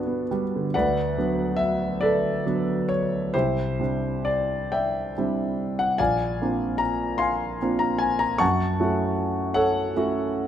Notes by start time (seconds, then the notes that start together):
Already playing: G2 D3 G3 B3 D4 F#4 B4 D5 F#5
0.06 B3
0.31 G3
0.55 D3
0.74 D2 B4 D5 F#5
1.18 F#3 B3 D4
1.56 E5
2.01 A4 B4 D5
2.46 F#3 B3 D4
2.89 C#5
3.34 C2 E4 G4 C5
3.80 G3 C4 D4 E4
4.25 D5
4.72 D5 E5 G5
5.18 G3 C4 D4 E4
5.79 F#5
5.98 A#1 D5 F5 G#5
6.42 A#3 C4 D4 F4
6.78 A#5
7.18 F5 G#5 C6
7.62 A#3 C4 D4 F4
7.79 A#5
7.98 G#5
8.19 A#5
8.38 F#2 F#5 A5 C#6
8.80 A3 C#4 E4 F#4
9.54 A4 C#5 F#5
9.96 A3 C#4 E4 F#4